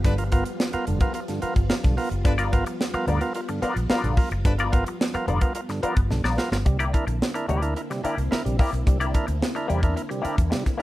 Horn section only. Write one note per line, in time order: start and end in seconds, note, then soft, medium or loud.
0.04 0.13 F3 loud
0.04 0.14 D4 loud
0.04 0.14 B4 loud
2.25 2.34 F3 loud
2.25 2.34 D4 loud
2.25 2.34 B4 loud
4.45 4.54 F3 medium
4.45 4.54 D4 loud
4.45 4.54 B4 loud